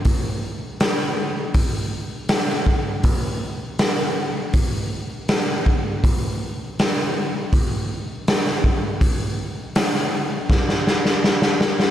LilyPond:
\new DrumStaff \with { instrumentName = "Drums" } \drummode { \time 4/4 \tempo 4 = 81 <hho bd>4 <hho sn>4 <hho bd>4 <hho sn>16 sn16 bd8 | <hho bd>4 <hho sn>4 <hho bd>4 <hho sn>8 bd8 | <hho bd>4 <hho sn>4 <hho bd>4 <hho sn>16 sn16 bd8 | <hho bd>4 <hho sn>16 sn8. <bd sn>16 sn16 sn16 sn16 sn16 sn16 sn16 sn16 | }